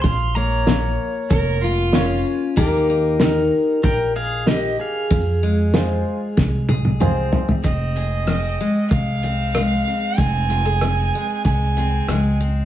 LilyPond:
<<
  \new Staff \with { instrumentName = "Fiddle" } { \time 4/4 \key f \minor \tempo 4 = 95 r2 bes'8 f'4 r8 | r1 | r1 | ees''2 f''2 |
aes''2 aes''4. r8 | }
  \new Staff \with { instrumentName = "Pedal steel guitar" } { \time 4/4 \key f \minor <f'' c'''>8 <des'' bes''>2 r4. | <ees' bes'>4 <ees' bes'>4 <bes' g''>8 <aes' f''>8 <g' ees''>8 <aes' f''>8~ | <aes' f''>2. r4 | r1 |
r1 | }
  \new Staff \with { instrumentName = "Upright piano" } { \time 4/4 \key f \minor r4 <f' bes' des''>8 r4. <f' bes' des''>8 r8 | r4 <ees' g' bes'>8 r4. <ees' g' bes'>8 r8 | r4 <f' aes' c''>8 r4. <f' aes' c''>8 r8 | r1 |
r1 | }
  \new Staff \with { instrumentName = "Steel-string acoustic guitar" } { \time 4/4 \key f \minor << { r8 bes2 f'8 des'4 | <bes ees' g'>8 ees'2~ ees'8 g'4 | r8 aes2 aes'8 c'4 | c'8 aes'8 c'8 aes4 c'8 aes8 c'8 |
c'8 f'16 aes'16 c'8 aes4 c'8 aes8 c'8 | } \\ { bes,4 f4 f,4 f4 | ees4 bes4 bes,4 bes4 | f,4 f4 c4 f4 | f,4 f4 c4 f4 |
f,4 f4 c4 f4 | } >> }
  \new Staff \with { instrumentName = "Upright bass" } { \clef bass \time 4/4 \key f \minor bes,,2 f,,2 | ees,2 bes,,2 | f,2 c,2 | f,,2 c,2 |
f,,2 c,4 des,4 | }
  \new DrumStaff \with { instrumentName = "Drums" } \drummode { \time 4/4 <hho bd>4 <hho sn>4 <hho bd>4 <hho sn>4 | <hho bd>4 <hho sn>4 <hho bd>4 <hho sn>4 | <hho bd>4 <hho sn>4 <bd sn>8 tommh16 tommh16 toml8 tomfh16 tomfh16 | <hh bd>8 hh8 <hh ss>4 <hh bd>8 hh8 <hh ss>4 |
<hh bd>8 hh8 <hh ss>4 <hh bd>8 hh8 <hh ss>4 | }
>>